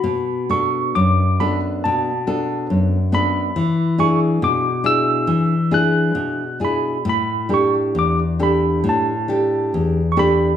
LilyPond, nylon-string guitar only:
\new Staff \with { instrumentName = "Nylon-string guitar" } { \time 2/4 \key b \minor \tempo 4 = 68 b,8 <b d' a'>8 fis,8 <b d' a'>8 | b,8 <b d' a'>8 fis,8 <b d' a'>8 | e8 <d' e' gis'>8 b,8 <d' e' gis'>8 | e8 <d' e' gis'>8 b,8 <d' e' gis'>8 |
a,8 <d' g' a'>8 e,8 <d' g' a'>8 | a,8 <d' g' a'>8 e,8 <d' g' a'>8 | }